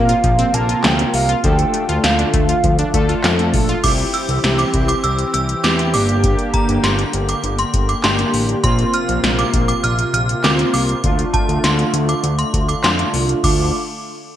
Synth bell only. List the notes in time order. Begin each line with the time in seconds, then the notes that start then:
3.84 D6
4.14 E6
4.58 D6
4.88 D6
5.04 E6
5.34 E6
5.64 D6
5.94 D6
6.54 A#5
6.84 C6
7.29 D6
7.59 C6
7.89 D6
8.04 C6
8.64 C6
8.94 F6
9.39 D6
9.68 D6
9.84 F6
10.14 F6
10.44 D6
10.74 D6
11.34 A5
11.64 C6
12.09 D6
12.39 C6
12.69 D6
12.84 C6
13.44 D6